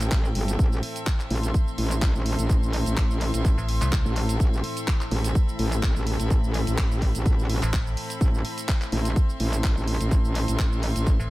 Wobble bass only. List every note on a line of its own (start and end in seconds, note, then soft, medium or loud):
0.11 0.33 A1 loud
0.35 0.57 G1 medium
0.59 0.81 A1 medium
1.30 1.53 A1 loud
1.78 2.13 A1 medium
2.15 2.37 A1 loud
2.39 2.84 A1 loud
2.86 3.32 A1 medium
3.34 3.56 A1 loud
4.05 4.38 A1 medium
4.40 4.62 A1 loud
5.11 5.33 A1 loud
5.59 5.94 A1 loud
5.96 6.18 A1 loud
6.20 6.65 A1 medium
6.67 7.13 A1 loud
7.15 7.60 A1 loud
8.21 8.43 A1 loud
8.92 9.14 A1 loud
9.40 9.75 A1 loud
9.77 9.98 A1 loud
10.01 10.46 A1 medium
10.48 10.94 A1 medium
10.96 11.18 A1 loud